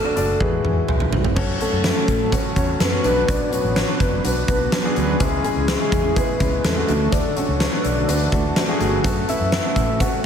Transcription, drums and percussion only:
0.17 closed hi-hat medium
0.41 kick medium
0.41 high tom medium
0.65 mid tom medium
0.88 mid tom medium
1.00 mid tom medium
1.13 floor tom medium
1.25 floor tom medium
1.36 kick loud
1.36 crash medium
1.36 cowbell medium
1.61 closed hi-hat medium
1.84 snare loud
1.84 closed hi-hat medium
1.84 cowbell medium
2.08 kick medium
2.08 closed hi-hat medium
2.32 kick medium
2.32 closed hi-hat medium
2.32 cowbell medium
2.56 kick medium
2.56 closed hi-hat medium
2.80 snare loud
2.80 closed hi-hat loud
2.80 cowbell medium
3.04 closed hi-hat medium
3.28 kick loud
3.28 closed hi-hat loud
3.28 cowbell medium
3.53 closed hi-hat medium
3.76 snare loud
3.76 closed hi-hat medium
3.76 cowbell medium
4.00 kick medium
4.00 closed hi-hat medium
4.24 closed hi-hat medium
4.24 cowbell medium
4.48 kick medium
4.48 closed hi-hat medium
4.72 snare loud
4.72 closed hi-hat medium
4.72 cowbell medium
4.96 closed hi-hat medium
5.20 kick loud
5.20 closed hi-hat medium
5.20 cowbell medium
5.44 closed hi-hat medium
5.68 snare loud
5.68 closed hi-hat medium
5.68 cowbell medium
5.92 kick medium
5.92 closed hi-hat medium
6.16 kick medium
6.16 closed hi-hat medium
6.16 cowbell medium
6.40 kick medium
6.40 closed hi-hat medium
6.64 snare loud
6.64 closed hi-hat loud
6.64 cowbell medium
6.89 closed hi-hat medium
7.12 kick loud
7.12 closed hi-hat loud
7.12 cowbell medium
7.37 closed hi-hat medium
7.60 snare loud
7.60 closed hi-hat medium
7.60 cowbell medium
7.84 closed hi-hat medium
8.09 closed hi-hat medium
8.09 cowbell medium
8.32 kick medium
8.32 closed hi-hat medium
8.56 snare loud
8.56 closed hi-hat loud
8.56 cowbell medium
8.81 closed hi-hat medium
9.04 kick loud
9.04 closed hi-hat loud
9.04 cowbell medium
9.29 closed hi-hat medium
9.52 snare loud
9.52 closed hi-hat medium
9.52 cowbell medium
9.76 kick medium
9.76 closed hi-hat medium
10.00 kick medium
10.00 closed hi-hat medium
10.00 cowbell medium

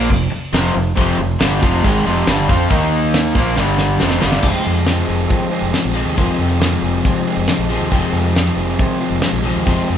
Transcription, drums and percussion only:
0.10 kick medium
0.54 snare loud
0.54 open hi-hat medium
0.65 snare soft
0.97 kick medium
0.97 open hi-hat medium
1.41 snare loud
1.41 open hi-hat medium
1.63 kick loud
1.84 kick medium
1.84 open hi-hat medium
2.27 snare loud
2.27 open hi-hat medium
2.49 kick loud
2.71 kick loud
2.71 open hi-hat medium
3.14 snare loud
3.14 open hi-hat medium
3.35 kick loud
3.56 snare medium
3.78 snare medium
4.00 snare medium
4.10 snare medium
4.22 snare medium
4.32 snare medium
4.43 kick loud
4.43 crash medium
4.65 open hi-hat soft
4.87 snare loud
4.87 open hi-hat medium
5.09 open hi-hat medium
5.30 kick loud
5.30 open hi-hat medium
5.52 open hi-hat medium
5.74 snare medium
5.74 open hi-hat medium
5.96 open hi-hat soft
6.17 kick loud
6.17 open hi-hat medium
6.40 open hi-hat soft
6.62 snare loud
6.62 open hi-hat medium
6.84 open hi-hat soft
7.05 kick loud
7.05 open hi-hat medium
7.27 open hi-hat medium
7.48 snare loud
7.48 open hi-hat medium
7.71 open hi-hat medium
7.91 kick loud
7.91 open hi-hat medium
8.14 open hi-hat soft
8.36 snare loud
8.36 open hi-hat medium
8.58 open hi-hat medium
8.79 kick loud
8.79 open hi-hat medium
9.00 open hi-hat soft
9.22 snare loud
9.22 open hi-hat medium
9.45 open hi-hat medium
9.67 kick medium
9.67 open hi-hat medium
9.88 open hi-hat soft

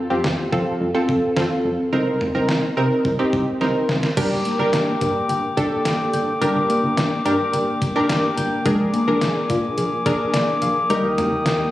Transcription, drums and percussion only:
0.24 snare loud
0.53 kick medium
1.09 kick medium
1.37 snare loud
2.21 mid tom loud
2.49 snare loud
3.05 kick medium
3.33 kick medium
3.61 snare medium
3.89 snare medium
4.03 snare medium
4.17 kick loud
4.17 closed hi-hat medium
4.17 crash medium
4.45 closed hi-hat medium
4.73 snare loud
4.73 closed hi-hat medium
5.01 kick medium
5.01 closed hi-hat medium
5.29 closed hi-hat medium
5.58 kick medium
5.58 closed hi-hat medium
5.85 snare loud
5.85 closed hi-hat medium
6.14 closed hi-hat medium
6.42 closed hi-hat medium
6.70 closed hi-hat medium
6.97 snare loud
6.97 closed hi-hat medium
7.26 closed hi-hat medium
7.53 closed hi-hat medium
7.82 kick medium
7.82 closed hi-hat medium
8.09 snare loud
8.09 closed hi-hat medium
8.38 closed hi-hat medium
8.66 kick loud
8.66 closed hi-hat medium
8.94 closed hi-hat medium
9.21 snare loud
9.21 closed hi-hat medium
9.50 kick medium
9.50 closed hi-hat medium
9.78 closed hi-hat medium
10.06 kick loud
10.06 closed hi-hat medium
10.34 snare loud
10.34 closed hi-hat medium
10.62 closed hi-hat medium
10.90 closed hi-hat medium
11.18 closed hi-hat medium
11.18 mid tom loud
11.46 snare loud
11.46 closed hi-hat medium

